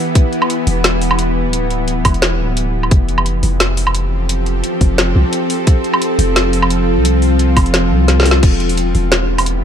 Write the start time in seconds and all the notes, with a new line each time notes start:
Already playing: E3 B3 E4 G4
0.15 kick, closed hi-hat
0.33 closed hi-hat
0.42 low woodblock
0.50 closed hi-hat
0.67 E1, open hi-hat
0.84 snare, closed hi-hat
1.02 open hi-hat
1.11 low woodblock
1.19 closed hi-hat
1.45 D1
1.53 closed hi-hat
1.70 closed hi-hat
1.88 closed hi-hat
2.05 E1, kick, open hi-hat, low woodblock
2.14 closed hi-hat
2.22 snare, closed hi-hat
2.40 D1
2.57 closed hi-hat
2.83 low woodblock
2.91 F1 F3, kick, closed hi-hat
3.04 C4
3.09 closed hi-hat
3.18 low woodblock
3.26 G4, closed hi-hat
3.42 F1 A4, open hi-hat
3.60 snare, closed hi-hat
3.77 open hi-hat
3.87 low woodblock
3.95 closed hi-hat
4.29 closed hi-hat
4.46 closed hi-hat
4.64 closed hi-hat
4.81 F1, kick, open hi-hat
4.98 snare, closed hi-hat
5.15 C2
5.33 closed hi-hat
5.50 open hi-hat
5.67 kick, closed hi-hat
5.84 closed hi-hat
5.89 F4
5.94 low woodblock
6.02 closed hi-hat
6.19 F1, open hi-hat
6.36 snare, closed hi-hat
6.53 open hi-hat
6.62 low woodblock
6.70 closed hi-hat
6.97 C2
7.05 closed hi-hat
7.22 open hi-hat
7.39 closed hi-hat
7.57 F1, kick, open hi-hat, low woodblock
7.66 closed hi-hat
7.74 snare, closed hi-hat
7.91 C2
8.08 snare, closed hi-hat
8.20 snare
8.23 snare
8.26 snare, open hi-hat
8.31 snare
8.43 E1 E3, kick, closed hi-hat, crash
8.55 B3
8.60 G4, closed hi-hat
8.69 open hi-hat
8.76 E4, closed hi-hat
8.95 E1, open hi-hat
9.12 snare, closed hi-hat
9.38 open hi-hat, low woodblock
9.46 closed hi-hat